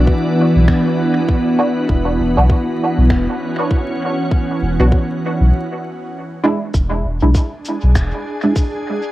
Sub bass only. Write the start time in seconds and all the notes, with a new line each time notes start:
0.56 B1
1.89 E1
2.19 E1
2.37 B1
2.98 B1
3.10 E1
4.62 E1
4.80 B1
5.40 B1
6.74 E1
7.04 E1
7.22 B1
7.83 B1
7.95 E1